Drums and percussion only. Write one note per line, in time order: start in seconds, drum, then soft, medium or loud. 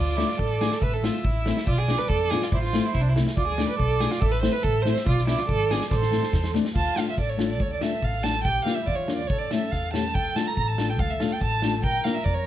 0.18 snare medium
0.29 snare soft
0.39 kick medium
0.61 snare medium
0.71 snare medium
0.82 kick medium
1.04 snare medium
1.25 kick medium
1.46 snare medium
1.57 snare medium
1.67 kick medium
1.88 snare medium
1.99 snare soft
2.10 kick medium
2.31 snare medium
2.42 snare medium
2.52 kick medium
2.64 snare soft
2.73 snare medium
2.95 kick medium
2.95 snare soft
3.16 snare medium
3.27 snare medium
3.37 kick medium
3.58 snare medium
3.80 kick medium
4.00 snare medium
4.11 snare medium
4.22 kick medium
4.33 snare soft
4.43 snare medium
4.64 kick medium
4.85 snare medium
4.96 snare medium
5.07 kick medium
5.17 snare soft
5.27 snare medium
5.38 snare soft
5.49 kick medium
5.71 snare medium
5.81 snare medium
5.91 kick medium
5.91 snare soft
6.02 snare soft
6.12 snare medium
6.23 snare medium
6.33 kick medium
6.33 snare medium
6.44 snare medium
6.54 snare medium
6.65 snare medium
6.75 kick medium
6.75 crash medium
6.96 snare medium
7.18 kick medium
7.18 snare soft
7.39 snare medium
7.60 kick medium
7.81 snare medium
8.03 kick medium
8.24 snare medium
8.45 kick medium
8.66 snare medium
8.87 kick medium
9.08 snare medium
9.30 kick medium
9.51 snare medium
9.73 kick medium
9.73 snare soft
9.94 snare medium
10.15 kick medium
10.36 snare medium
10.57 kick medium
10.78 snare medium
10.99 kick medium
11.20 snare medium
11.41 kick medium
11.62 snare medium
11.84 kick medium
12.05 snare medium
12.26 kick medium